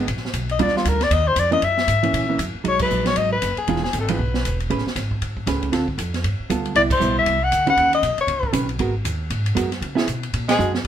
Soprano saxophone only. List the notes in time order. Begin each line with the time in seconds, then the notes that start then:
0.51 D#5
0.63 D5
0.77 F4
0.89 A#4
1.03 D5
1.13 D#5
1.28 C5
1.39 D5
1.53 D#5
1.65 E5
2.68 C#5
2.82 B4
3.07 C#5
3.17 D#5
3.32 B4
3.58 G#4
3.84 G#4
4.00 A4
4.10 B4
6.76 D5
6.92 C5
7.19 E5
7.44 F#5
7.70 F#5
7.95 D#5
8.21 C#5
10.51 G#4